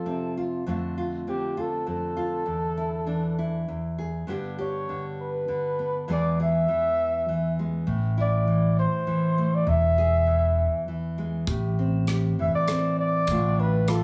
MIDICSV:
0, 0, Header, 1, 5, 480
1, 0, Start_track
1, 0, Tempo, 600601
1, 530, Time_signature, 3, 2, 24, 8
1, 11218, End_track
2, 0, Start_track
2, 0, Title_t, "Flugelhorn"
2, 0, Program_c, 0, 56
2, 0, Note_on_c, 0, 69, 64
2, 300, Note_off_c, 0, 69, 0
2, 1031, Note_on_c, 0, 67, 72
2, 1278, Note_on_c, 0, 69, 72
2, 1290, Note_off_c, 0, 67, 0
2, 1503, Note_off_c, 0, 69, 0
2, 1518, Note_on_c, 0, 69, 76
2, 2913, Note_off_c, 0, 69, 0
2, 3683, Note_on_c, 0, 73, 70
2, 4116, Note_off_c, 0, 73, 0
2, 4165, Note_on_c, 0, 71, 71
2, 4836, Note_off_c, 0, 71, 0
2, 4890, Note_on_c, 0, 74, 83
2, 5095, Note_off_c, 0, 74, 0
2, 5132, Note_on_c, 0, 76, 83
2, 6037, Note_off_c, 0, 76, 0
2, 6559, Note_on_c, 0, 74, 76
2, 6990, Note_off_c, 0, 74, 0
2, 7027, Note_on_c, 0, 72, 74
2, 7630, Note_on_c, 0, 74, 82
2, 7642, Note_off_c, 0, 72, 0
2, 7744, Note_on_c, 0, 76, 91
2, 7756, Note_off_c, 0, 74, 0
2, 8697, Note_off_c, 0, 76, 0
2, 9912, Note_on_c, 0, 76, 70
2, 10014, Note_off_c, 0, 76, 0
2, 10031, Note_on_c, 0, 74, 87
2, 10356, Note_off_c, 0, 74, 0
2, 10386, Note_on_c, 0, 74, 88
2, 10870, Note_on_c, 0, 71, 76
2, 10882, Note_off_c, 0, 74, 0
2, 11104, Note_on_c, 0, 69, 81
2, 11116, Note_off_c, 0, 71, 0
2, 11218, Note_off_c, 0, 69, 0
2, 11218, End_track
3, 0, Start_track
3, 0, Title_t, "Nylon-string guitar"
3, 0, Program_c, 1, 24
3, 0, Note_on_c, 1, 41, 57
3, 0, Note_on_c, 1, 53, 45
3, 0, Note_on_c, 1, 65, 50
3, 45, Note_on_c, 1, 48, 50
3, 48, Note_on_c, 1, 60, 47
3, 286, Note_off_c, 1, 65, 0
3, 299, Note_on_c, 1, 65, 50
3, 498, Note_off_c, 1, 48, 0
3, 499, Note_off_c, 1, 60, 0
3, 500, Note_off_c, 1, 53, 0
3, 501, Note_off_c, 1, 41, 0
3, 505, Note_off_c, 1, 65, 0
3, 531, Note_on_c, 1, 41, 63
3, 535, Note_on_c, 1, 50, 48
3, 541, Note_on_c, 1, 57, 45
3, 545, Note_on_c, 1, 60, 47
3, 550, Note_on_c, 1, 65, 55
3, 770, Note_off_c, 1, 65, 0
3, 780, Note_on_c, 1, 65, 48
3, 1006, Note_off_c, 1, 50, 0
3, 1009, Note_off_c, 1, 60, 0
3, 1016, Note_on_c, 1, 50, 45
3, 1019, Note_on_c, 1, 60, 47
3, 1247, Note_off_c, 1, 65, 0
3, 1256, Note_on_c, 1, 65, 51
3, 1481, Note_off_c, 1, 41, 0
3, 1482, Note_off_c, 1, 60, 0
3, 1490, Note_on_c, 1, 41, 49
3, 1493, Note_on_c, 1, 60, 49
3, 1721, Note_off_c, 1, 65, 0
3, 1731, Note_on_c, 1, 65, 52
3, 1941, Note_off_c, 1, 41, 0
3, 1941, Note_off_c, 1, 60, 0
3, 1941, Note_off_c, 1, 65, 0
3, 1945, Note_off_c, 1, 57, 0
3, 1964, Note_on_c, 1, 40, 58
3, 2217, Note_on_c, 1, 64, 44
3, 2445, Note_off_c, 1, 50, 0
3, 2448, Note_on_c, 1, 52, 48
3, 2453, Note_on_c, 1, 62, 48
3, 2694, Note_off_c, 1, 64, 0
3, 2706, Note_on_c, 1, 64, 49
3, 2901, Note_off_c, 1, 52, 0
3, 2904, Note_off_c, 1, 62, 0
3, 2929, Note_off_c, 1, 40, 0
3, 2944, Note_on_c, 1, 40, 55
3, 3180, Note_off_c, 1, 64, 0
3, 3184, Note_on_c, 1, 68, 47
3, 3390, Note_off_c, 1, 68, 0
3, 3409, Note_off_c, 1, 40, 0
3, 3413, Note_on_c, 1, 43, 62
3, 3420, Note_on_c, 1, 50, 50
3, 3422, Note_on_c, 1, 59, 50
3, 3431, Note_on_c, 1, 62, 50
3, 3437, Note_on_c, 1, 67, 57
3, 3654, Note_off_c, 1, 67, 0
3, 3664, Note_on_c, 1, 67, 50
3, 3896, Note_off_c, 1, 50, 0
3, 3907, Note_on_c, 1, 50, 51
3, 4371, Note_off_c, 1, 50, 0
3, 4381, Note_on_c, 1, 50, 56
3, 4617, Note_off_c, 1, 59, 0
3, 4627, Note_on_c, 1, 59, 45
3, 4824, Note_off_c, 1, 43, 0
3, 4829, Note_off_c, 1, 67, 0
3, 4830, Note_off_c, 1, 59, 0
3, 4832, Note_off_c, 1, 62, 0
3, 4856, Note_off_c, 1, 50, 0
3, 4858, Note_on_c, 1, 40, 66
3, 4862, Note_on_c, 1, 52, 57
3, 4869, Note_on_c, 1, 56, 53
3, 4873, Note_on_c, 1, 59, 49
3, 4878, Note_on_c, 1, 68, 54
3, 5102, Note_off_c, 1, 68, 0
3, 5112, Note_on_c, 1, 68, 52
3, 5337, Note_off_c, 1, 52, 0
3, 5340, Note_on_c, 1, 52, 57
3, 5819, Note_off_c, 1, 52, 0
3, 5823, Note_on_c, 1, 52, 56
3, 6056, Note_off_c, 1, 56, 0
3, 6067, Note_on_c, 1, 56, 49
3, 6269, Note_off_c, 1, 56, 0
3, 6269, Note_off_c, 1, 68, 0
3, 6288, Note_on_c, 1, 45, 72
3, 6290, Note_off_c, 1, 40, 0
3, 6298, Note_off_c, 1, 59, 0
3, 6533, Note_on_c, 1, 64, 49
3, 6770, Note_off_c, 1, 52, 0
3, 6773, Note_on_c, 1, 52, 55
3, 7245, Note_off_c, 1, 52, 0
3, 7248, Note_on_c, 1, 52, 62
3, 7497, Note_on_c, 1, 57, 49
3, 7702, Note_off_c, 1, 57, 0
3, 7725, Note_off_c, 1, 45, 0
3, 7725, Note_on_c, 1, 40, 70
3, 7968, Note_off_c, 1, 64, 0
3, 7975, Note_on_c, 1, 68, 59
3, 8203, Note_off_c, 1, 52, 0
3, 8206, Note_on_c, 1, 52, 56
3, 8685, Note_off_c, 1, 52, 0
3, 8695, Note_on_c, 1, 52, 54
3, 8935, Note_on_c, 1, 56, 54
3, 9144, Note_off_c, 1, 52, 0
3, 9144, Note_off_c, 1, 56, 0
3, 9146, Note_off_c, 1, 68, 0
3, 9170, Note_off_c, 1, 40, 0
3, 9175, Note_on_c, 1, 45, 63
3, 9182, Note_on_c, 1, 67, 62
3, 9420, Note_on_c, 1, 60, 49
3, 9656, Note_off_c, 1, 67, 0
3, 9672, Note_on_c, 1, 67, 61
3, 9903, Note_on_c, 1, 52, 56
3, 10135, Note_off_c, 1, 60, 0
3, 10147, Note_on_c, 1, 60, 57
3, 10587, Note_off_c, 1, 52, 0
3, 10590, Note_off_c, 1, 60, 0
3, 10592, Note_off_c, 1, 67, 0
3, 10613, Note_off_c, 1, 45, 0
3, 10625, Note_on_c, 1, 45, 70
3, 10629, Note_on_c, 1, 50, 54
3, 10635, Note_on_c, 1, 57, 61
3, 10640, Note_on_c, 1, 62, 58
3, 10647, Note_on_c, 1, 65, 64
3, 10861, Note_off_c, 1, 62, 0
3, 10864, Note_on_c, 1, 62, 54
3, 11098, Note_off_c, 1, 65, 0
3, 11101, Note_on_c, 1, 65, 61
3, 11218, Note_off_c, 1, 45, 0
3, 11218, Note_off_c, 1, 50, 0
3, 11218, Note_off_c, 1, 57, 0
3, 11218, Note_off_c, 1, 62, 0
3, 11218, Note_off_c, 1, 65, 0
3, 11218, End_track
4, 0, Start_track
4, 0, Title_t, "Fretless electric bass"
4, 0, Program_c, 2, 35
4, 6292, Note_on_c, 2, 33, 95
4, 7078, Note_off_c, 2, 33, 0
4, 7725, Note_on_c, 2, 28, 98
4, 8517, Note_off_c, 2, 28, 0
4, 9168, Note_on_c, 2, 33, 90
4, 9959, Note_off_c, 2, 33, 0
4, 10608, Note_on_c, 2, 33, 95
4, 11218, Note_off_c, 2, 33, 0
4, 11218, End_track
5, 0, Start_track
5, 0, Title_t, "Drums"
5, 9169, Note_on_c, 9, 36, 84
5, 9170, Note_on_c, 9, 42, 41
5, 9249, Note_off_c, 9, 36, 0
5, 9250, Note_off_c, 9, 42, 0
5, 9649, Note_on_c, 9, 42, 45
5, 9654, Note_on_c, 9, 37, 63
5, 9729, Note_off_c, 9, 42, 0
5, 9733, Note_off_c, 9, 37, 0
5, 10130, Note_on_c, 9, 42, 46
5, 10135, Note_on_c, 9, 37, 67
5, 10210, Note_off_c, 9, 42, 0
5, 10215, Note_off_c, 9, 37, 0
5, 10607, Note_on_c, 9, 42, 48
5, 10610, Note_on_c, 9, 36, 77
5, 10686, Note_off_c, 9, 42, 0
5, 10690, Note_off_c, 9, 36, 0
5, 11090, Note_on_c, 9, 42, 51
5, 11095, Note_on_c, 9, 37, 68
5, 11170, Note_off_c, 9, 42, 0
5, 11175, Note_off_c, 9, 37, 0
5, 11218, End_track
0, 0, End_of_file